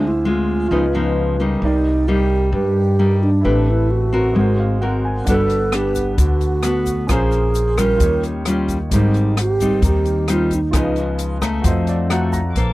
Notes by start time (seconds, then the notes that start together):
Already playing: D2 D3 F4 G#4 C5 E5
0.07 E4
0.25 G#3 C4 F4
0.30 F4
0.69 C#2 C#3 F3 B3 D#4 F4 G#4
0.73 B4 D#5
0.95 F3 B3 D#4
1.40 G3 A#3 D#4
1.60 C2 C3 D#4 G4
1.64 D#4 A#4 D5
2.08 G3 A#3 D#4 G4
2.52 G2 G4
2.99 G3 A#3 D#4
3.23 D4
3.41 A1 A3 C4 E4 G4 A4 B4
3.70 E4
3.91 F#4
4.13 C4 F#4 A#4
4.33 G#1 G#3 D#4 F#4
4.38 A#4 C5
4.60 F5
4.81 C4 F#4 A#4 F#5
5.05 G#5
5.25 G1 G3 B3 D4 A4 F#5, kick, closed hi-hat, shaker
5.29 D4 F#4 A4 B4
5.50 closed hi-hat, shaker
5.72 B3 D4 G4, cross-stick, closed hi-hat
5.95 kick, closed hi-hat, shaker
6.18 D2 D3 F#4, kick, closed hi-hat, shaker
6.41 closed hi-hat, shaker
6.63 B3 D4 F#4, cross-stick, closed hi-hat, shaker
6.86 kick, closed hi-hat, shaker
7.07 A#1 A#3 C#4 F4 G#4, kick, cross-stick, closed hi-hat, shaker
7.11 G#4 C5
7.32 closed hi-hat, shaker
7.55 closed hi-hat, shaker
7.77 G3 C#4 F4 A#4, kick, cross-stick, closed hi-hat, shaker
7.97 D#2 D#3 F4 G4, kick, closed hi-hat, shaker
8.02 A#4 C#5
8.23 closed hi-hat, shaker
8.45 G3 C#4 F4, cross-stick, closed hi-hat, shaker
8.68 kick, closed hi-hat, shaker
8.90 G#1 G#2 G3 C4 D#4 G4 A#4, kick, closed hi-hat, shaker
8.94 D#4 C5
9.14 closed hi-hat, shaker
9.37 G4, cross-stick, closed hi-hat
9.60 G3 C4 D#4, kick, closed hi-hat, shaker
9.82 D#2 D#3, kick, closed hi-hat, shaker
9.87 G4
10.05 closed hi-hat, shaker
10.28 G3 C4 D#4, cross-stick, closed hi-hat, shaker
10.32 F4
10.51 D#4, kick, closed hi-hat, shaker
10.71 C#2 C#3 F3 B3 D#4 F4 G#4, kick, cross-stick, closed hi-hat, shaker
10.75 B4 D#5
10.96 closed hi-hat, shaker
11.19 closed hi-hat, shaker
11.42 A3 D#4, kick, cross-stick, closed hi-hat, shaker
11.62 F2 F3 F#4 A4, kick, closed hi-hat, shaker
11.66 C5 D#5
11.87 D5, closed hi-hat, shaker
12.10 A3 D#4 F#4 F#5, cross-stick, closed hi-hat
12.33 A#5, kick, closed hi-hat, shaker
12.55 A#1 A#3 D4 A4 C5 A5 C6 D6, kick, closed hi-hat